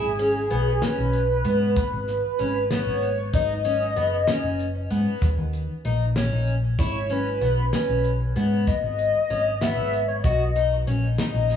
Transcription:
Already playing: picked electric bass G#1, analog synth lead G#4
0.19 twelve-string acoustic guitar C#4, closed hi-hat
0.50 picked electric bass B1, twelve-string acoustic guitar B3, closed hi-hat
0.82 twelve-string acoustic guitar C#4, analog synth lead B4, snare, closed hi-hat
0.98 picked electric bass B1
1.13 closed hi-hat
1.45 picked electric bass G#2, twelve-string acoustic guitar B3, closed hi-hat
1.76 analog synth lead B4, kick, closed hi-hat
1.93 picked electric bass G#1
2.08 snare, closed hi-hat
2.39 picked electric bass G#1, twelve-string acoustic guitar C#4, closed hi-hat
2.71 twelve-string acoustic guitar B3, analog synth lead C#5, snare, closed hi-hat
2.87 picked electric bass G#1
3.02 closed hi-hat
3.33 picked electric bass G#1, twelve-string acoustic guitar D#4, analog synth lead D#5, kick, closed hi-hat
3.65 twelve-string acoustic guitar C#4, closed hi-hat
3.96 picked electric bass F#1, twelve-string acoustic guitar B3, closed hi-hat
4.27 twelve-string acoustic guitar C#4, snare, closed hi-hat
4.44 picked electric bass F#1
4.59 closed hi-hat
4.90 picked electric bass G#2, twelve-string acoustic guitar B3, closed hi-hat
5.22 picked electric bass D#2, kick, closed hi-hat
5.38 picked electric bass D#2
5.53 closed hi-hat
5.85 picked electric bass A#1, twelve-string acoustic guitar D#4, closed hi-hat
6.16 twelve-string acoustic guitar C#4, snare, closed hi-hat
6.32 picked electric bass A#1
6.47 closed hi-hat
6.79 picked electric bass G#1, twelve-string acoustic guitar E4, analog synth lead C#5, kick, closed hi-hat
7.10 twelve-string acoustic guitar C#4, analog synth lead B4, closed hi-hat
7.41 picked electric bass B1, twelve-string acoustic guitar B3, closed hi-hat
7.73 twelve-string acoustic guitar C#4, analog synth lead B4, snare, closed hi-hat
7.89 picked electric bass B1
8.04 closed hi-hat
8.36 picked electric bass G#2, twelve-string acoustic guitar B3, snare, closed hi-hat
8.67 analog synth lead D#5, kick, snare, closed hi-hat
8.84 picked electric bass G#1
8.99 closed hi-hat
9.30 picked electric bass G#1, twelve-string acoustic guitar C#4, closed hi-hat
9.60 twelve-string acoustic guitar B3, analog synth lead E5, snare, closed hi-hat
9.77 picked electric bass G#1
9.93 closed hi-hat
10.08 analog synth lead C#5
10.24 picked electric bass B1, twelve-string acoustic guitar F#4, analog synth lead D#5, kick, closed hi-hat
10.56 twelve-string acoustic guitar D#4, closed hi-hat
10.87 picked electric bass A#1, twelve-string acoustic guitar C#4, closed hi-hat
11.18 twelve-string acoustic guitar D#4, analog synth lead D#5, snare, closed hi-hat
11.34 picked electric bass A#1
11.50 snare, closed hi-hat

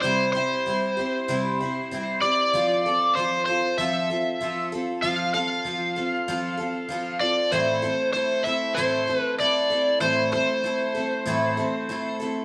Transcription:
0.02 twelve-string acoustic guitar C3 G3 C4 E4 G4, electric slide guitar C5
0.33 twelve-string acoustic guitar E4 G4, electric slide guitar C5
0.38 twelve-string acoustic guitar C4
0.66 twelve-string acoustic guitar G3 C4 E4 G4
0.97 twelve-string acoustic guitar C4 E4 G4
1.28 twelve-string acoustic guitar C3 G3 C4 E4 G4
1.61 twelve-string acoustic guitar C4 E4 G4
1.91 twelve-string acoustic guitar G3 C4 E4 G4
2.21 twelve-string acoustic guitar C4 E4 G4, electric slide guitar D5
2.53 twelve-string acoustic guitar F3 C4 F4 A4
2.86 twelve-string acoustic guitar C4 F4 A4
3.15 twelve-string acoustic guitar F3 C4 F4, electric slide guitar C5
3.20 twelve-string acoustic guitar A4
3.46 twelve-string acoustic guitar F4 A4, electric slide guitar C5
3.51 twelve-string acoustic guitar C4
3.78 twelve-string acoustic guitar F3 C4 F4 A4, electric slide guitar E5
4.10 twelve-string acoustic guitar C4 F4 A4
4.41 twelve-string acoustic guitar F3 C4 F4 A4
4.72 twelve-string acoustic guitar C4 F4 A4
5.02 twelve-string acoustic guitar F3 C4 F4 A4, electric slide guitar F5
5.34 twelve-string acoustic guitar C4 F4 A4, electric slide guitar F5
5.65 twelve-string acoustic guitar F3 C4 F4 A4
5.96 twelve-string acoustic guitar C4 F4 A4
6.28 twelve-string acoustic guitar F3 C4 F4 A4
6.58 twelve-string acoustic guitar C4 F4 A4
6.89 twelve-string acoustic guitar F3 C4 F4 A4
7.20 twelve-string acoustic guitar C4 F4 A4, electric slide guitar D5
7.52 twelve-string acoustic guitar A2 E3 A3 C4 E4 A4, electric slide guitar C5
7.82 twelve-string acoustic guitar A3 C4 E4 A4
8.13 twelve-string acoustic guitar A3 C4 E4 A4, electric slide guitar C5
8.44 twelve-string acoustic guitar C4 E4 A4, electric slide guitar E5
8.48 twelve-string acoustic guitar A3
8.74 twelve-string acoustic guitar A2 E3 A3 C4, electric slide guitar C5
8.79 twelve-string acoustic guitar E4 A4
9.07 twelve-string acoustic guitar A3 C4 E4 A4
9.17 electric slide guitar B4
9.38 twelve-string acoustic guitar A3 C4 E4 A4, electric slide guitar D5
9.70 twelve-string acoustic guitar A3 C4 E4 A4
10.00 twelve-string acoustic guitar A2 E3 A3 C4 E4 A4, electric slide guitar C5
10.32 twelve-string acoustic guitar A3 C4 E4 A4, electric slide guitar C5
10.63 twelve-string acoustic guitar A3 C4 E4 A4
10.95 twelve-string acoustic guitar A3 C4 E4 A4
11.26 twelve-string acoustic guitar A2 E3 A3 C4 E4 A4
11.57 twelve-string acoustic guitar A3 C4 E4 A4
11.89 twelve-string acoustic guitar A3 C4 E4 A4
12.20 twelve-string acoustic guitar A3 C4 E4 A4

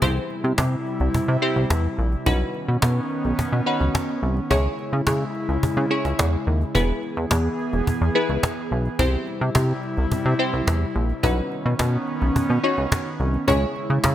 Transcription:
0.02 analog synth bass C2, analog synth pad C3 G3 E4, synth stab C4 E4 G4 C5, cajon bass
0.16 cajon slap
0.30 cajon slap
0.44 analog synth bass C3, cajon slap
0.58 analog synth bass C3, cajon bass, cajon slap
0.72 cajon slap
0.86 cajon slap
1.00 analog synth bass C2, cajon slap
1.14 analog synth bass C3, cajon bass
1.28 analog synth bass C3
1.42 synth stab C4 E4 G4 C5, cajon slap
1.56 analog synth bass C2, cajon slap
1.70 analog synth bass E2, cajon bass, cajon slap
1.84 cajon slap
1.98 analog synth bass A#1, cajon slap
2.12 cajon slap
2.26 analog synth bass B1, analog synth pad D#3 B3 C#4, synth stab C#4 D#4 F#4 B4, cajon bass
2.41 cajon slap
2.55 cajon slap
2.68 analog synth bass B2, cajon slap
2.82 analog synth bass B2, cajon bass, cajon slap
2.97 cajon slap
3.10 cajon slap
3.25 analog synth bass B1, cajon slap
3.39 analog synth bass B2, cajon bass
3.52 analog synth bass B2, cajon slap
3.66 synth stab C#4 D#4 F#4 B4, cajon slap
3.80 analog synth bass C#2, cajon slap
3.95 cajon bass, cajon slap
4.09 cajon slap
4.23 analog synth bass C2, cajon slap
4.37 cajon slap
4.50 analog synth bass C#2, analog synth pad C#3 G#3 E4, synth stab C#4 E4 G#4 C#5, cajon bass
4.65 cajon slap
4.79 cajon slap
4.93 analog synth bass C#3, cajon slap
5.07 analog synth bass C#3, cajon bass, cajon slap
5.21 cajon slap
5.35 cajon slap
5.49 analog synth bass C#2, cajon slap
5.63 analog synth bass C#3, cajon bass
5.77 analog synth bass C#3, cajon slap
5.91 synth stab C#4 E4 G#4 C#5, cajon slap
6.05 analog synth bass C#2, cajon slap
6.19 analog synth bass E2, cajon bass, cajon slap
6.33 cajon slap
6.47 analog synth bass D#2, cajon slap
6.61 cajon slap
6.75 analog synth bass E1, analog synth pad E3 B3 G#4, synth stab B3 E4 G#4 B4, cajon bass
6.89 cajon slap
7.03 cajon slap
7.17 analog synth bass E2, cajon slap
7.31 analog synth bass E2, cajon bass, cajon slap
7.45 cajon slap
7.59 cajon slap
7.73 analog synth bass E1, cajon slap
7.87 analog synth bass E2, cajon bass
8.01 analog synth bass E2, cajon slap
8.15 synth stab B3 E4 G#4 B4, cajon slap
8.29 analog synth bass C#2, cajon slap
8.43 cajon bass, cajon slap
8.57 cajon slap
8.71 analog synth bass B1, cajon slap
8.85 cajon slap
8.99 analog synth bass C2, analog synth pad C3 G3 E4, synth stab C4 E4 G4 C5, cajon bass
9.13 cajon slap
9.27 cajon slap
9.41 analog synth bass C3, cajon slap
9.55 analog synth bass C3, cajon bass, cajon slap
9.69 cajon slap
9.83 cajon slap
9.97 analog synth bass C2, cajon slap
10.12 analog synth bass C3, cajon bass
10.25 analog synth bass C3
10.39 synth stab C4 E4 G4 C5, cajon slap
10.53 analog synth bass C2, cajon slap
10.67 analog synth bass E2, cajon bass, cajon slap
10.81 cajon slap
10.96 analog synth bass A#1, cajon slap
11.09 cajon slap
11.23 analog synth bass B1, analog synth pad D#3 B3 C#4, synth stab C#4 D#4 F#4 B4, cajon bass
11.38 cajon slap
11.52 cajon slap
11.66 analog synth bass B2, cajon slap
11.79 analog synth bass B2, cajon bass, cajon slap
11.94 cajon slap
12.08 cajon slap
12.22 analog synth bass B1, cajon slap
12.36 analog synth bass B2, cajon bass
12.50 analog synth bass B2, cajon slap
12.64 synth stab C#4 D#4 F#4 C#5, cajon slap
12.78 analog synth bass C#2, cajon slap
12.92 cajon bass, cajon slap
13.06 cajon slap
13.20 analog synth bass C2, cajon slap
13.34 cajon slap
13.48 analog synth bass C#2, analog synth pad C#3 G#3 E4, synth stab C#4 E4 G#4 C#5, cajon bass
13.62 cajon slap
13.76 cajon slap
13.90 analog synth bass C#3, cajon slap
14.04 analog synth bass C#3, cajon bass, cajon slap

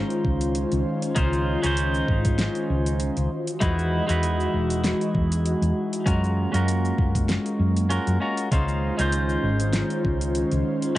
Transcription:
Already playing: analog synth pad D#3 C#4 F4 C5, clean electric guitar G#3 C#4 D#4 F4 C5
0.10 closed hi-hat, shaker
0.25 fretless electric bass C#2, kick
0.41 closed hi-hat, shaker
0.55 closed hi-hat, shaker
0.72 fretless electric bass C#2, closed hi-hat, shaker
1.02 closed hi-hat, shaker
1.15 fretless electric bass C#2, clean electric guitar G#3 C#4 D#4 F4 C5, kick, closed hi-hat, shaker
1.33 shaker
1.62 fretless electric bass C#2, clean electric guitar G#3 C#4 D#4 F4, closed hi-hat, shaker
1.66 clean electric guitar C5
1.77 closed hi-hat, shaker
1.94 shaker
2.08 fretless electric bass G#1, kick
2.25 kick, closed hi-hat, shaker
2.39 snare, closed hi-hat, shaker
2.55 closed hi-hat, shaker
2.70 fretless electric bass C#2
2.86 closed hi-hat, shaker
3.00 closed hi-hat, shaker
3.17 fretless electric bass C#2, closed hi-hat, shaker
3.30 analog synth pad E3 G#3 F#4 D#5
3.47 closed hi-hat, shaker
3.60 fretless electric bass E2, clean electric guitar G#3 D#4 E4 F#4 B4, kick, closed hi-hat, shaker
3.79 shaker
4.07 fretless electric bass E2, clean electric guitar G#3 D#4 E4 F#4, closed hi-hat, shaker
4.11 clean electric guitar B4
4.23 closed hi-hat, shaker
4.40 shaker
4.54 fretless electric bass E1
4.70 closed hi-hat, shaker
4.84 snare, closed hi-hat, shaker
5.01 closed hi-hat, shaker
5.15 fretless electric bass E2, kick
5.32 closed hi-hat, shaker
5.46 closed hi-hat, shaker
5.62 fretless electric bass E2, closed hi-hat, shaker
5.93 closed hi-hat, shaker
6.06 fretless electric bass F#2, clean electric guitar G#3 C#4 F4 F#4 A#4, analog synth pad A#3, kick, closed hi-hat, shaker
6.24 shaker
6.52 fretless electric bass F#2, clean electric guitar G#3 C#4 F4 F#4, closed hi-hat, shaker
6.56 clean electric guitar A#4
6.68 closed hi-hat, shaker
6.85 shaker
6.98 fretless electric bass F#1, kick
7.15 kick, closed hi-hat, shaker
7.29 snare, closed hi-hat, shaker
7.46 closed hi-hat, shaker
7.59 fretless electric bass F#2
7.77 closed hi-hat, shaker
7.90 clean electric guitar G#3 C#4 F4 F#4 A#4, closed hi-hat, shaker
8.07 fretless electric bass F#2, closed hi-hat, shaker
8.20 clean electric guitar G#3 C#4 F4 F#4 A#4
8.37 closed hi-hat, shaker
8.50 fretless electric bass C#2, analog synth pad D#3 C#4 F4 C5, clean electric guitar G#3 C#4 D#4 F4 C5, kick, closed hi-hat, shaker
8.68 shaker
8.97 fretless electric bass C#2, clean electric guitar G#3 C#4 D#4 F4, closed hi-hat, shaker
9.01 clean electric guitar C5
9.12 closed hi-hat, shaker
9.29 shaker
9.43 fretless electric bass G#1
9.60 closed hi-hat, shaker
9.73 snare, closed hi-hat, shaker
9.90 closed hi-hat, shaker
10.05 fretless electric bass C#2, kick
10.21 closed hi-hat, shaker
10.35 closed hi-hat, shaker
10.52 fretless electric bass C#2, closed hi-hat, shaker
10.82 closed hi-hat, shaker

